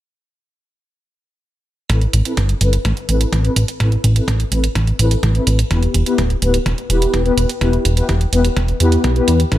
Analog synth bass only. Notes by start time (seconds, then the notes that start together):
1.90 A1
2.14 A1
2.37 G1
2.61 G1
2.85 A1
3.09 A1
3.33 A1
3.56 A1
3.80 A1
4.04 A1
4.28 A1
4.52 A1
4.75 A1
4.99 A1
5.23 A1
5.47 A1
5.71 E1
5.94 E1
6.18 D1
6.42 D1
6.66 E1
6.90 E1
7.14 E1
7.37 E1
7.61 E1
7.85 E1
8.09 E1
8.33 E1
8.56 E1
8.80 E2
9.04 B1
9.28 E2
9.52 A1